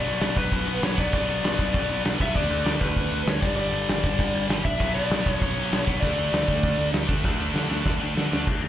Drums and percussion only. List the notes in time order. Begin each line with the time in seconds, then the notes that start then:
0.05 crash
0.20 snare, crash
0.36 kick, crash
0.52 kick, crash
0.67 crash
0.82 snare, crash
0.98 kick, crash
1.13 kick, crash
1.28 crash
1.44 snare, crash
1.59 kick, crash
1.74 kick, crash
1.90 crash
2.05 snare, crash
2.20 kick, crash
2.36 kick, crash
2.51 crash
2.65 snare, crash
2.81 kick, crash
2.96 kick, crash
3.12 crash
3.27 snare, crash
3.42 kick, crash
3.57 crash
3.73 crash
3.88 snare, crash
4.03 kick, crash
4.19 kick, crash
4.34 crash
4.49 snare, crash
4.65 kick, crash
4.80 kick, crash
4.95 crash
5.11 snare, crash
5.26 kick, crash
5.42 kick, crash
5.57 crash
5.72 snare, crash
5.87 kick, crash
6.02 kick, crash
6.18 crash
6.33 snare, crash
6.48 kick, crash
6.63 kick, crash
6.78 crash
6.93 snare, crash
7.08 kick, crash
7.24 kick, snare
7.56 snare
7.71 snare
7.86 kick, snare
8.17 snare
8.33 snare
8.47 kick, crash
8.62 open hi-hat